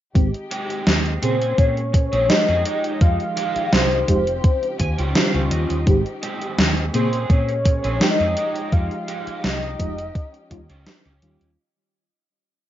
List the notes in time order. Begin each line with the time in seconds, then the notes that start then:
0.15 G#1 D#3 G#3 C4 D#4 G4, kick, closed hi-hat
0.34 closed hi-hat
0.51 G#3 C4 G4, closed hi-hat
0.70 closed hi-hat
0.87 D#2, snare, closed hi-hat
1.06 closed hi-hat
1.22 A#2 C#3 G#3 A#3 C4 C#4 G#4 C5, closed hi-hat
1.42 closed hi-hat
1.58 A#2 C#5, kick, closed hi-hat
1.77 closed hi-hat
1.93 muted clean electric guitar stroke, kick, closed hi-hat
2.12 A#1 C4 C#4 G#4, closed hi-hat
2.28 F3 G#3 D#4 D#5 G5, snare, closed hi-hat
2.48 F2 C4 C#4 G#4, closed hi-hat
2.65 D#3 G#3 D#4 F4 G4, closed hi-hat
2.84 closed hi-hat
3.01 F2 F5, kick, closed hi-hat
3.20 closed hi-hat
3.37 G#3 D#4 G4, closed hi-hat
3.56 muted fretless electric bass stroke, closed hi-hat
3.73 C2 C5, snare, closed hi-hat
3.91 closed hi-hat
4.08 F1 F3 G#3 D#4 G4, kick, closed hi-hat
4.27 closed hi-hat
4.44 C#3 F3 D#4, kick, closed hi-hat
4.63 closed hi-hat
4.79 D#2 G#5, muted clean electric guitar stroke, kick, closed hi-hat
4.98 C#2 G3 C#4 F4 G5, closed hi-hat
5.15 D#3 G3 C#4 F4 F5, snare, closed hi-hat
5.34 C#2 G3 C#4 F4, closed hi-hat
5.51 D#2 D#5, closed hi-hat
5.70 D#2, closed hi-hat
5.86 G#1 D#3 G#3 C4 G4, kick, closed hi-hat
6.06 closed hi-hat
6.23 G#3 C4 G4, closed hi-hat
6.41 closed hi-hat
6.58 D#2, snare, closed hi-hat
6.77 closed hi-hat
6.93 A#2 C#3 A#3 C4 C#4 G#4 C5, closed hi-hat
7.13 closed hi-hat
7.30 A#2 C#5, kick, closed hi-hat
7.49 closed hi-hat
7.65 muted clean electric guitar stroke, kick, closed hi-hat
7.84 A#1 C4 C#4 G#4, closed hi-hat
7.99 F3 G#3 D#4 D#5 G5, snare, closed hi-hat
8.20 F2 C4 C#4 G#4, closed hi-hat
8.36 F3 G#3 D#4 G4, closed hi-hat
8.56 closed hi-hat
8.72 F2 F5, kick, closed hi-hat
8.91 closed hi-hat
9.08 G#3 D#4 G4, closed hi-hat
9.27 muted fretless electric bass stroke, closed hi-hat
9.44 C2 D#5, snare, closed hi-hat
9.63 closed hi-hat
9.79 F1 F3 G#3 D#4 G4, kick, closed hi-hat
9.98 closed hi-hat
10.15 C#4 D#4, kick, closed hi-hat
10.34 closed hi-hat
10.50 D#2 D#3 G3 C#4 F4, muted clean electric guitar stroke, kick, closed hi-hat
10.70 C#2 C#4 F4 G4, closed hi-hat
10.87 snare, closed hi-hat
11.05 C#2 C#4 F4 G4, closed hi-hat
11.22 D#2 D#3 G3 C#4 F4, closed hi-hat
11.41 D#2, closed hi-hat